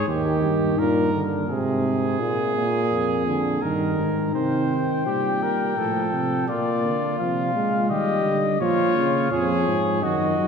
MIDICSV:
0, 0, Header, 1, 5, 480
1, 0, Start_track
1, 0, Tempo, 710900
1, 52, Time_signature, 3, 2, 24, 8
1, 7073, End_track
2, 0, Start_track
2, 0, Title_t, "Trumpet"
2, 0, Program_c, 0, 56
2, 2935, Note_on_c, 0, 79, 66
2, 4351, Note_off_c, 0, 79, 0
2, 4376, Note_on_c, 0, 74, 69
2, 4845, Note_off_c, 0, 74, 0
2, 4851, Note_on_c, 0, 77, 65
2, 5322, Note_off_c, 0, 77, 0
2, 5331, Note_on_c, 0, 75, 73
2, 5801, Note_off_c, 0, 75, 0
2, 5811, Note_on_c, 0, 73, 84
2, 6280, Note_off_c, 0, 73, 0
2, 6284, Note_on_c, 0, 73, 68
2, 6760, Note_off_c, 0, 73, 0
2, 6766, Note_on_c, 0, 75, 73
2, 7073, Note_off_c, 0, 75, 0
2, 7073, End_track
3, 0, Start_track
3, 0, Title_t, "Flugelhorn"
3, 0, Program_c, 1, 56
3, 55, Note_on_c, 1, 67, 72
3, 532, Note_on_c, 1, 70, 83
3, 542, Note_off_c, 1, 67, 0
3, 840, Note_off_c, 1, 70, 0
3, 1009, Note_on_c, 1, 68, 90
3, 2445, Note_on_c, 1, 70, 70
3, 2455, Note_off_c, 1, 68, 0
3, 2929, Note_off_c, 1, 70, 0
3, 2933, Note_on_c, 1, 72, 68
3, 3391, Note_off_c, 1, 72, 0
3, 3418, Note_on_c, 1, 67, 70
3, 3664, Note_on_c, 1, 70, 72
3, 3674, Note_off_c, 1, 67, 0
3, 3902, Note_on_c, 1, 69, 72
3, 3912, Note_off_c, 1, 70, 0
3, 4381, Note_on_c, 1, 65, 75
3, 4391, Note_off_c, 1, 69, 0
3, 5336, Note_on_c, 1, 67, 77
3, 5346, Note_off_c, 1, 65, 0
3, 5696, Note_off_c, 1, 67, 0
3, 5811, Note_on_c, 1, 65, 82
3, 6280, Note_off_c, 1, 65, 0
3, 6292, Note_on_c, 1, 68, 89
3, 6775, Note_on_c, 1, 66, 76
3, 6785, Note_off_c, 1, 68, 0
3, 7073, Note_off_c, 1, 66, 0
3, 7073, End_track
4, 0, Start_track
4, 0, Title_t, "Euphonium"
4, 0, Program_c, 2, 58
4, 53, Note_on_c, 2, 51, 98
4, 503, Note_off_c, 2, 51, 0
4, 530, Note_on_c, 2, 46, 84
4, 763, Note_off_c, 2, 46, 0
4, 767, Note_on_c, 2, 50, 78
4, 999, Note_off_c, 2, 50, 0
4, 1006, Note_on_c, 2, 48, 90
4, 1482, Note_on_c, 2, 46, 81
4, 1493, Note_off_c, 2, 48, 0
4, 1718, Note_off_c, 2, 46, 0
4, 1722, Note_on_c, 2, 46, 94
4, 2195, Note_off_c, 2, 46, 0
4, 2204, Note_on_c, 2, 50, 76
4, 2441, Note_off_c, 2, 50, 0
4, 2446, Note_on_c, 2, 51, 84
4, 2922, Note_off_c, 2, 51, 0
4, 2932, Note_on_c, 2, 51, 62
4, 3420, Note_on_c, 2, 55, 59
4, 3430, Note_off_c, 2, 51, 0
4, 3894, Note_off_c, 2, 55, 0
4, 3898, Note_on_c, 2, 53, 65
4, 4375, Note_on_c, 2, 58, 75
4, 4385, Note_off_c, 2, 53, 0
4, 4739, Note_off_c, 2, 58, 0
4, 4854, Note_on_c, 2, 53, 78
4, 5089, Note_off_c, 2, 53, 0
4, 5095, Note_on_c, 2, 56, 75
4, 5333, Note_on_c, 2, 55, 83
4, 5344, Note_off_c, 2, 56, 0
4, 5806, Note_off_c, 2, 55, 0
4, 5810, Note_on_c, 2, 53, 86
4, 6050, Note_on_c, 2, 49, 79
4, 6060, Note_off_c, 2, 53, 0
4, 6285, Note_off_c, 2, 49, 0
4, 6289, Note_on_c, 2, 53, 78
4, 6762, Note_off_c, 2, 53, 0
4, 6772, Note_on_c, 2, 51, 72
4, 7009, Note_off_c, 2, 51, 0
4, 7013, Note_on_c, 2, 54, 66
4, 7073, Note_off_c, 2, 54, 0
4, 7073, End_track
5, 0, Start_track
5, 0, Title_t, "Tuba"
5, 0, Program_c, 3, 58
5, 51, Note_on_c, 3, 39, 78
5, 291, Note_on_c, 3, 43, 75
5, 301, Note_off_c, 3, 39, 0
5, 1000, Note_off_c, 3, 43, 0
5, 1004, Note_on_c, 3, 44, 75
5, 1473, Note_off_c, 3, 44, 0
5, 1482, Note_on_c, 3, 46, 70
5, 1788, Note_off_c, 3, 46, 0
5, 1964, Note_on_c, 3, 41, 69
5, 2420, Note_off_c, 3, 41, 0
5, 2445, Note_on_c, 3, 43, 67
5, 2683, Note_off_c, 3, 43, 0
5, 2689, Note_on_c, 3, 44, 69
5, 2927, Note_off_c, 3, 44, 0
5, 2930, Note_on_c, 3, 48, 68
5, 3390, Note_off_c, 3, 48, 0
5, 3418, Note_on_c, 3, 46, 59
5, 3889, Note_off_c, 3, 46, 0
5, 3900, Note_on_c, 3, 45, 65
5, 4134, Note_off_c, 3, 45, 0
5, 4141, Note_on_c, 3, 48, 69
5, 4374, Note_off_c, 3, 48, 0
5, 4379, Note_on_c, 3, 46, 69
5, 4612, Note_off_c, 3, 46, 0
5, 4620, Note_on_c, 3, 50, 66
5, 4852, Note_off_c, 3, 50, 0
5, 4857, Note_on_c, 3, 48, 66
5, 5095, Note_on_c, 3, 46, 74
5, 5105, Note_off_c, 3, 48, 0
5, 5329, Note_off_c, 3, 46, 0
5, 5333, Note_on_c, 3, 51, 71
5, 5568, Note_off_c, 3, 51, 0
5, 5572, Note_on_c, 3, 50, 78
5, 5807, Note_off_c, 3, 50, 0
5, 5811, Note_on_c, 3, 46, 90
5, 6280, Note_off_c, 3, 46, 0
5, 6290, Note_on_c, 3, 41, 80
5, 6526, Note_off_c, 3, 41, 0
5, 6530, Note_on_c, 3, 44, 80
5, 6771, Note_on_c, 3, 42, 81
5, 6781, Note_off_c, 3, 44, 0
5, 7073, Note_off_c, 3, 42, 0
5, 7073, End_track
0, 0, End_of_file